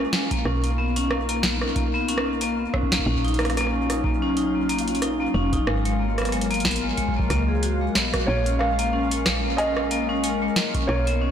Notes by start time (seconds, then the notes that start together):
Already playing: G#3 C#4 F4 A#4 F5
0.00 G#3
0.13 G#3, snare
0.31 A#3, kick, closed hi-hat
0.45 B1 C#4 D#4, cross-stick
0.64 A#3, closed hi-hat
0.78 B3
0.96 C#4, closed hi-hat
1.11 A#3, cross-stick
1.29 A#3, closed hi-hat
1.43 B3, kick, snare
1.61 C#4, cross-stick
1.76 A#3, kick, closed hi-hat
1.94 B3
2.08 C#4, closed hi-hat
2.18 cross-stick
2.27 A#3
2.41 A#3, closed hi-hat
2.59 B3
2.74 C#4, kick, cross-stick
2.83 kick
2.92 A#3, kick, snare, closed hi-hat
2.99 kick
3.06 A#1 F#3 C#4 D#4, kick
3.15 kick
3.25 D#4, closed hi-hat
3.28 closed hi-hat
3.34 closed hi-hat
3.39 A#3, cross-stick, closed hi-hat
3.45 cross-stick, closed hi-hat
3.50 cross-stick, closed hi-hat
3.57 A#3, cross-stick, closed hi-hat
3.61 cross-stick
3.67 cross-stick
3.71 C#4
3.90 D#4, cross-stick, closed hi-hat
4.04 A#3, kick
4.22 C#4
4.37 D#4, closed hi-hat
4.55 A#3
4.69 A#3, closed hi-hat
4.79 closed hi-hat
4.88 C#4, closed hi-hat
4.95 closed hi-hat
5.02 D#4, cross-stick, closed hi-hat
5.20 A#3
5.34 F1 C#4
5.53 D#4, kick, closed hi-hat
5.67 G#1 F#3 G#3 A#4, cross-stick
5.85 G#3, closed hi-hat
6.00 A#3
6.18 B3, cross-stick, closed hi-hat
6.22 cross-stick
6.25 cross-stick, closed hi-hat
6.29 G#3, cross-stick
6.32 cross-stick, closed hi-hat
6.37 cross-stick
6.41 cross-stick, closed hi-hat
6.46 cross-stick
6.51 A#3, closed hi-hat
6.54 closed hi-hat
6.60 closed hi-hat
6.65 B3, kick, snare, closed hi-hat
6.71 closed hi-hat
6.76 closed hi-hat
6.83 G#3
6.97 G#3, kick, closed hi-hat
7.08 kick
7.16 A#3, kick
7.30 C#2 A#3, kick, cross-stick, closed hi-hat
7.48 G#4
7.63 F#4, closed hi-hat
7.81 G#3
7.95 B3, kick, snare
8.14 F#4, kick, cross-stick, closed hi-hat
8.26 A#1 A#3 C#4 A#4 C#5
8.46 C#4, closed hi-hat
8.59 G#3 F5, cross-stick
8.79 A#3, closed hi-hat
8.93 C#4
9.11 G#3, closed hi-hat
9.26 G#3, kick, cross-stick, snare
9.44 A#3
9.57 C#4 D#5, closed hi-hat, cowbell
9.77 G#3, cross-stick
9.91 A#3, closed hi-hat
10.09 C#4
10.24 G#3, closed hi-hat
10.42 G#3
10.56 A#3, snare
10.74 C#4, kick, closed hi-hat
10.87 B1 A#3 D#4 C#5, cross-stick
11.07 B3, closed hi-hat
11.21 C#4